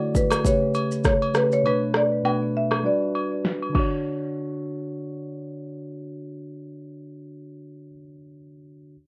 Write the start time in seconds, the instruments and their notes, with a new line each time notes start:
Already playing: tine electric piano D3 A3 E4 F#4 C#5 D5, marimba A4
0.15 marimba B4, kick, shaker
0.31 cross-stick, high agogo, shaker
0.44 tine electric piano B2 A3 G4 B4, marimba C#5, kick, shaker
0.50 tine electric piano C#3
0.74 high agogo, shaker
0.91 shaker
1.04 marimba C#5, kick, cross-stick, shaker
1.22 high agogo
1.34 tine electric piano C#3 A3 G4 B4, marimba B4, cross-stick, shaker
1.52 marimba C#5, shaker
1.63 tine electric piano B2 A3 D4 B4, marimba B4, high agogo
1.94 marimba D5, cross-stick
2.23 tine electric piano B2 A3 D4 B4, high agogo, low woodblock
2.57 marimba E5
2.71 cross-stick, high agogo
2.83 tine electric piano G3 D4 F#4 B4, marimba D5
3.15 high agogo
3.45 snare
3.62 high agogo
3.69 tine electric piano D3 D4
3.75 tine electric piano F#4, kick, crash, high agogo
3.79 tine electric piano C#5